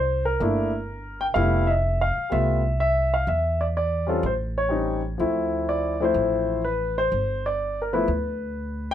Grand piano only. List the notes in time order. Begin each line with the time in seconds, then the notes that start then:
Already playing: C5
0.25 A#4
0.40 A3 A#3 D4 E4
1.21 G5
1.34 G3 A3 B3 E4 F5
1.67 D#5 E5
2.01 F5
2.30 G3 A3 B3 F4 E5
2.80 E5
3.14 F5
3.28 E5
3.61 D5
3.77 D5
4.07 G3 C4 C#4 F4 A4
4.26 C5
4.58 C#5
4.69 G3 C4 C#4 D#4
5.18 F3 A3 C4 E4
5.69 D5
6.00 F3 A3 C4 E4 C5
6.65 B4
6.98 C5
7.46 D5
7.82 A#4
7.93 F3 A3 B3 E4 B4